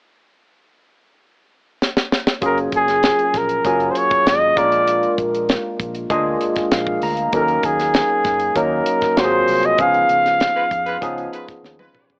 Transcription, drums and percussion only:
1.82 snare
1.97 snare
2.12 snare
2.27 snare
2.42 kick, closed hi-hat
2.58 closed hi-hat
2.72 kick, closed hi-hat
2.88 snare, closed hi-hat
3.03 snare, closed hi-hat
3.19 closed hi-hat
3.34 kick, snare, closed hi-hat
3.49 closed hi-hat
3.65 kick, closed hi-hat
3.80 closed hi-hat
3.95 closed hi-hat
4.11 kick, closed hi-hat
4.27 snare, closed hi-hat
4.57 kick, closed hi-hat
4.72 closed hi-hat
4.88 closed hi-hat
5.03 closed hi-hat
5.18 kick, closed hi-hat
5.35 closed hi-hat
5.49 snare, closed hi-hat
5.80 kick, closed hi-hat
5.95 closed hi-hat
6.10 kick, closed hi-hat
6.41 closed hi-hat
6.56 kick, snare, closed hi-hat
6.72 snare, closed hi-hat
6.87 kick
7.02 open hi-hat
7.17 closed hi-hat
7.33 kick, closed hi-hat
7.48 closed hi-hat
7.63 kick, closed hi-hat
7.79 snare, closed hi-hat
7.94 snare, closed hi-hat
8.24 kick, snare, closed hi-hat
8.40 closed hi-hat
8.56 kick, closed hi-hat
8.86 closed hi-hat
9.01 kick, snare, closed hi-hat
9.17 snare, closed hi-hat
9.48 open hi-hat
9.63 closed hi-hat
9.78 kick, closed hi-hat
9.94 closed hi-hat
10.09 closed hi-hat
10.26 snare, closed hi-hat
10.40 snare, closed hi-hat
10.71 kick, closed hi-hat
10.86 closed hi-hat
11.02 kick, closed hi-hat
11.18 closed hi-hat
11.33 closed hi-hat
11.48 kick, snare, closed hi-hat
11.64 snare
11.79 high tom
11.95 mid tom
12.10 floor tom

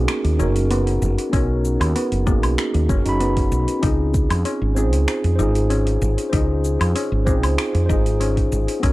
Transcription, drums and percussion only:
0.08 finger snap, open hi-hat, cabasa
0.25 open hi-hat
0.40 cabasa
0.56 open hi-hat, cabasa
0.71 open hi-hat, cabasa
0.87 open hi-hat
1.02 cabasa
1.18 open hi-hat, cabasa
1.33 kick, open hi-hat, cabasa
1.65 cabasa
1.81 open hi-hat, cabasa, low woodblock
1.96 open hi-hat, cabasa
2.12 open hi-hat
2.27 kick, cabasa
2.43 open hi-hat, cabasa, low woodblock
2.58 finger snap, open hi-hat, cabasa
2.74 open hi-hat
2.89 kick, cabasa
3.06 open hi-hat, cabasa
3.21 open hi-hat, cabasa
3.37 kick, open hi-hat
3.52 cabasa
3.68 open hi-hat, cabasa
3.83 kick, open hi-hat, cabasa
4.14 kick, cabasa
4.30 open hi-hat, cabasa, low woodblock
4.45 open hi-hat, cabasa
4.77 cabasa
4.93 open hi-hat, cabasa
5.08 finger snap, open hi-hat, cabasa
5.24 open hi-hat
5.39 cabasa
5.55 open hi-hat, cabasa
5.70 open hi-hat, cabasa
5.87 open hi-hat
6.02 cabasa
6.18 open hi-hat, cabasa
6.33 kick, open hi-hat, cabasa
6.64 cabasa
6.81 open hi-hat, cabasa, low woodblock
6.96 open hi-hat, cabasa
7.27 kick, cabasa
7.43 open hi-hat, cabasa, low woodblock
7.58 finger snap, open hi-hat, cabasa
7.75 open hi-hat
7.90 kick, cabasa
8.06 open hi-hat, cabasa
8.21 open hi-hat, cabasa
8.37 kick, open hi-hat
8.52 cabasa
8.68 open hi-hat, cabasa
8.83 kick, open hi-hat, cabasa

